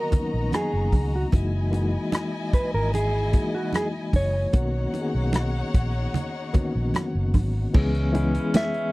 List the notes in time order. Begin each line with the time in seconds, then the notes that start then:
Already playing: D3 D#3 F#3 A#3 B3 F#4 A#4 D#5 A#5
0.11 D#3 F#3 A#3 B3 C#4, muted fingered electric bass stroke, kick, closed hi-hat, muted conga, low conga
0.19 D#4
0.34 A#1
0.52 G#4, cross-stick, closed hi-hat, high conga
0.73 F#1
0.92 C#2, kick, open hi-hat, high conga
1.16 F#4
1.32 F#1 E3 G#3 A#3 D#4 E4 F#4 D#5 G#5, kick, closed hi-hat, muted conga
1.71 E3 G#3 A#3 D#4 F#4, closed hi-hat, muted conga
2.12 cross-stick, closed hi-hat, high conga
2.53 B4, muted fingered electric bass stroke, kick, closed hi-hat
2.74 G#1 A#4
2.94 G#4, closed hi-hat, muted conga
3.33 E3 G#3 A#3 D#4 F#4, kick, closed hi-hat, muted conga
3.55 F#4
3.73 G#4, cross-stick, closed hi-hat, high conga
4.13 F#1 C#5, kick, open hi-hat, high conga
4.53 B1 D#3 A#3 B3 C#4 D#4 F#4 C#5 F#5, kick, closed hi-hat, muted conga
4.93 D#3 A#3 B3 C#4 F#4, closed hi-hat, muted conga
5.01 G#4
5.15 B1
5.33 cross-stick, closed hi-hat, high conga
5.74 A#1, kick, closed hi-hat
6.14 closed hi-hat, muted conga, low conga
6.53 D3 A#3 B3 C#4 F#4, muted fingered electric bass stroke, kick, closed hi-hat, low conga
6.60 D#3
6.75 A#1
6.94 cross-stick, closed hi-hat, high conga
7.15 F#1
7.34 G#1, kick, open hi-hat, high conga
7.74 C#2 C#3 E3 G#3 B3 C#4 G#4, kick, crash, muted conga
7.95 closed hi-hat
8.13 E3 G#3 B3 C#4 G#4, closed hi-hat, muted conga
8.34 closed hi-hat
8.54 E5, snare, closed hi-hat, high conga
8.74 closed hi-hat